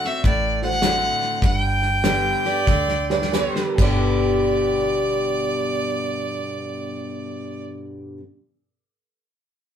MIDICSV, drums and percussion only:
0, 0, Header, 1, 2, 480
1, 0, Start_track
1, 0, Key_signature, 1, "major"
1, 0, Tempo, 595829
1, 1148, Time_signature, 4, 2, 24, 8
1, 1643, Tempo, 648649
1, 2603, Tempo, 705882
1, 6967, End_track
2, 0, Start_track
2, 0, Title_t, "Drums"
2, 34, Note_on_c, 9, 38, 28
2, 115, Note_off_c, 9, 38, 0
2, 194, Note_on_c, 9, 36, 101
2, 194, Note_on_c, 9, 38, 31
2, 274, Note_off_c, 9, 36, 0
2, 274, Note_off_c, 9, 38, 0
2, 499, Note_on_c, 9, 38, 30
2, 579, Note_off_c, 9, 38, 0
2, 581, Note_on_c, 9, 38, 32
2, 661, Note_off_c, 9, 38, 0
2, 661, Note_on_c, 9, 38, 99
2, 661, Note_on_c, 9, 44, 76
2, 742, Note_off_c, 9, 38, 0
2, 742, Note_off_c, 9, 44, 0
2, 980, Note_on_c, 9, 38, 35
2, 1061, Note_off_c, 9, 38, 0
2, 1145, Note_on_c, 9, 36, 93
2, 1145, Note_on_c, 9, 38, 29
2, 1226, Note_off_c, 9, 36, 0
2, 1226, Note_off_c, 9, 38, 0
2, 1469, Note_on_c, 9, 38, 30
2, 1549, Note_off_c, 9, 38, 0
2, 1642, Note_on_c, 9, 38, 103
2, 1642, Note_on_c, 9, 44, 82
2, 1716, Note_off_c, 9, 38, 0
2, 1716, Note_off_c, 9, 44, 0
2, 1951, Note_on_c, 9, 38, 31
2, 2025, Note_off_c, 9, 38, 0
2, 2112, Note_on_c, 9, 36, 102
2, 2113, Note_on_c, 9, 38, 54
2, 2186, Note_off_c, 9, 36, 0
2, 2187, Note_off_c, 9, 38, 0
2, 2270, Note_on_c, 9, 38, 54
2, 2344, Note_off_c, 9, 38, 0
2, 2428, Note_on_c, 9, 38, 62
2, 2502, Note_off_c, 9, 38, 0
2, 2517, Note_on_c, 9, 38, 61
2, 2591, Note_off_c, 9, 38, 0
2, 2600, Note_on_c, 9, 38, 77
2, 2600, Note_on_c, 9, 44, 78
2, 2668, Note_off_c, 9, 38, 0
2, 2668, Note_off_c, 9, 44, 0
2, 2753, Note_on_c, 9, 38, 67
2, 2821, Note_off_c, 9, 38, 0
2, 2906, Note_on_c, 9, 36, 104
2, 2909, Note_on_c, 9, 49, 81
2, 2974, Note_off_c, 9, 36, 0
2, 2977, Note_off_c, 9, 49, 0
2, 6967, End_track
0, 0, End_of_file